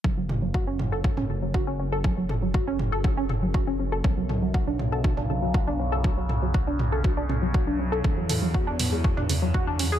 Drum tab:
HH |----------------|----------------|----------------|----------------|
T2 |--o---o--o------|--o---o---o-----|--o---o--o------|--o---o---o-----|
BD |o---o---o---o---|o---o---o---o---|o---o---o---o---|o---o---o---o---|

HH |--o---o---o---o-|
T2 |--o---o--o------|
BD |o---o---o---o---|